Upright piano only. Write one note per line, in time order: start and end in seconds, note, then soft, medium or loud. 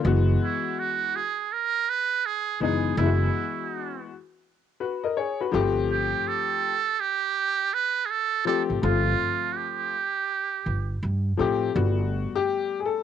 0.03 1.15 E3 medium
0.03 1.15 G#3 medium
0.03 1.16 B3 medium
0.03 1.16 F#4 medium
2.60 2.91 E3 medium
2.60 2.91 G#3 medium
2.60 2.91 B3 medium
2.60 2.92 D#4 medium
2.96 4.07 E3 medium
2.96 4.08 G#3 medium
2.96 4.08 B3 medium
2.96 3.06 E4 medium
3.05 4.12 F#4 medium
4.80 5.03 F#4 medium
4.80 5.02 B4 medium
5.03 5.17 A#4 medium
5.03 5.16 D#5 medium
5.17 5.39 G#4 medium
5.17 5.39 C#5 medium
5.40 5.75 F#4 medium
5.40 5.75 B4 medium
5.51 6.72 F3 medium
5.51 6.72 A3 medium
5.51 6.73 C4 medium
5.51 6.73 G4 loud
8.45 8.76 F3 medium
8.45 8.76 A3 medium
8.45 8.77 C4 medium
8.45 8.77 G4 medium
8.82 9.93 F3 medium
8.82 9.93 A3 medium
8.82 9.94 C4 medium
8.82 9.94 F4 medium
11.37 11.68 F3 medium
11.37 11.69 A3 medium
11.37 11.69 C4 medium
11.37 11.70 G4 loud
11.75 13.03 G3 soft
11.75 13.03 A3 soft
11.75 13.03 B3 medium
11.75 12.37 F#4 medium
12.35 12.77 G4 loud
12.80 12.85 G#4 medium
12.86 13.03 A4 medium